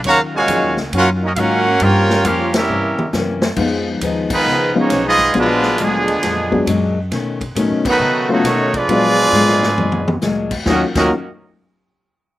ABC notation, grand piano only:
X:1
M:4/4
L:1/8
Q:"Swing" 1/4=136
K:Ebm
V:1 name="Grand piano"
z8 | z8 | [F,A,CEF]3 z2 [F,A,CEF] z2 | [G,A,C=DF]3 z2 [G,A,CDA] z2 |
z2 [^F,=A,=B,^C^D] z2 [F,A,B,C=F] z2 | [G,A,C=DF]3 z4 z | [G,B,DEF] [G,B,DEF] z6 |]